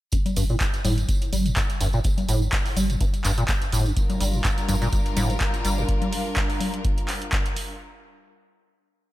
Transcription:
0.12 acid bass G2, kick, closed hi-hat, tambourine
0.26 closed hi-hat, tambourine, low conga
0.36 sub bass G1, acid bass G2, open hi-hat, tambourine
0.49 acid bass A#2, tambourine
0.60 acid bass G1, kick, clap, closed hi-hat, tambourine
0.73 closed hi-hat, tambourine
0.85 sub bass G1, acid bass A2, open hi-hat, tambourine, low conga
0.98 acid bass G2, closed hi-hat, tambourine
1.09 kick, closed hi-hat, tambourine
1.22 closed hi-hat, tambourine
1.33 sub bass G1, acid bass G3, open hi-hat, tambourine, low conga
1.46 acid bass G2, closed hi-hat, tambourine
1.56 acid bass G2, kick, clap, closed hi-hat, tambourine
1.69 closed hi-hat, tambourine
1.80 sub bass G1, acid bass G2, open hi-hat, tambourine
1.93 acid bass A#2, tambourine
2.04 acid bass G1, kick, closed hi-hat, tambourine
2.17 closed hi-hat, tambourine, low conga
2.28 sub bass G1, acid bass A2, open hi-hat, tambourine
2.42 acid bass G2, tambourine
2.52 kick, clap, closed hi-hat, tambourine
2.65 open hi-hat, tambourine
2.77 sub bass G1, acid bass G3, open hi-hat, tambourine, low conga
2.90 acid bass G2, closed hi-hat, tambourine
3.01 acid bass G2, kick, closed hi-hat, tambourine
3.14 closed hi-hat, tambourine
3.24 sub bass G1, acid bass G2, clap, open hi-hat, tambourine
3.38 acid bass A#2, closed hi-hat, tambourine
3.48 acid bass G1, kick, clap, closed hi-hat, tambourine
3.62 closed hi-hat, tambourine
3.72 sub bass G1, acid bass A2, open hi-hat, tambourine
3.85 acid bass G2, tambourine
3.97 string section G3 D4 F4 A#4, kick, closed hi-hat, tambourine
4.10 closed hi-hat, tambourine, low conga
4.21 sub bass G1, acid bass G3, open hi-hat, tambourine
4.33 acid bass G2, tambourine
4.44 acid bass G2, kick, clap, closed hi-hat, tambourine
4.58 closed hi-hat, tambourine
4.69 sub bass G1, acid bass G2, open hi-hat, tambourine, low conga
4.82 acid bass A#2, closed hi-hat, tambourine
4.93 acid bass G1, kick, closed hi-hat, tambourine
5.06 closed hi-hat, tambourine
5.17 sub bass G1, acid bass A2, open hi-hat, tambourine, low conga
5.30 acid bass G2, closed hi-hat, tambourine
5.41 kick, clap, closed hi-hat, tambourine
5.54 closed hi-hat, tambourine
5.65 sub bass G1, acid bass G3, open hi-hat, tambourine
5.78 acid bass G2, tambourine
5.89 kick, closed hi-hat
6.02 closed hi-hat, low conga
6.13 open hi-hat
6.36 kick, clap, closed hi-hat
6.50 open hi-hat
6.61 open hi-hat, low conga
6.74 closed hi-hat
6.85 kick, closed hi-hat
6.98 closed hi-hat
7.08 clap, open hi-hat
7.22 closed hi-hat
7.32 kick, clap, closed hi-hat
7.46 closed hi-hat
7.56 open hi-hat

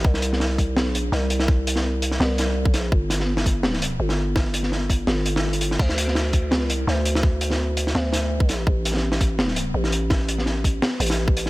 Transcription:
0.05 808-style bass C2, kick
0.14 snare
0.22 closed hi-hat
0.33 snare
0.40 snare
0.58 kick, closed hi-hat
0.77 808-style bass B1, snare
0.95 closed hi-hat
1.01 808-style bass A#1
1.12 808-style bass C2, snare
1.30 closed hi-hat
1.40 snare
1.48 kick
1.67 closed hi-hat
1.76 snare
2.02 closed hi-hat
2.12 snare
2.20 808-style bass C2, snare
2.38 snare, closed hi-hat
2.65 kick
2.70 808-style bass B1, snare, closed hi-hat
2.92 808-style bass G1, kick
3.10 snare, closed hi-hat
3.20 snare
3.37 snare
3.46 kick, closed hi-hat
3.63 snare
3.74 snare
3.82 closed hi-hat
4.00 808-style bass G1
4.09 snare
4.36 kick, snare
4.54 closed hi-hat
4.63 snare
4.72 snare
4.90 kick, closed hi-hat
5.07 808-style bass G1, snare
5.26 closed hi-hat
5.36 snare
5.53 closed hi-hat
5.61 closed hi-hat
5.71 snare
5.79 808-style bass D2, kick, crash
5.89 snare
5.98 closed hi-hat
6.08 snare
6.15 snare
6.33 kick, closed hi-hat
6.51 808-style bass C#2, snare
6.70 closed hi-hat
6.75 808-style bass C2
6.87 808-style bass D2, snare
7.05 closed hi-hat
7.15 snare
7.23 kick
7.41 closed hi-hat
7.50 snare
7.77 closed hi-hat
7.87 snare
7.95 808-style bass D2, snare
8.13 snare, closed hi-hat
8.40 kick
8.49 snare, closed hi-hat
8.67 808-style bass A1, kick
8.85 snare, closed hi-hat
8.91 snare
8.94 snare
8.97 snare
9.12 snare
9.21 kick, closed hi-hat
9.39 snare
9.48 snare
9.56 closed hi-hat
9.74 808-style bass A1
9.84 snare
9.92 closed hi-hat
10.10 kick, snare
10.29 closed hi-hat
10.39 snare
10.46 snare
10.64 kick, closed hi-hat
10.82 snare
11.00 808-style bass A1, closed hi-hat
11.06 snare, closed hi-hat
11.12 closed hi-hat
11.28 kick
11.37 closed hi-hat
11.46 snare

